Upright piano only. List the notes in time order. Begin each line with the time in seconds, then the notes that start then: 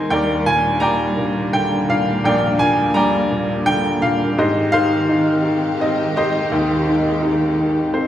Already playing: D#3 C4 D#4 C5 D#5 G5 G#5
0.10 D#2 A#4 D5 G5
0.46 A#2 G#5
0.80 G3 D5 G5 A#5
1.18 A#2
1.53 D3 G5
1.89 A#2 F5
2.24 A#1 A#4 D5 G5
2.59 A#2 G#5
2.94 G3 D5 G5 A#5
3.31 A#2
3.66 D3 G5
4.02 A#2 F5
4.38 G#2 G4 C5 D#5
4.72 D#3 C5 F5
5.09 D#4
5.45 D#3
5.80 C4 D#5
6.16 D#3 G4 C5 D#5
6.51 D#2
6.87 D#3
7.22 D#4
7.59 D#3
7.94 C4 C5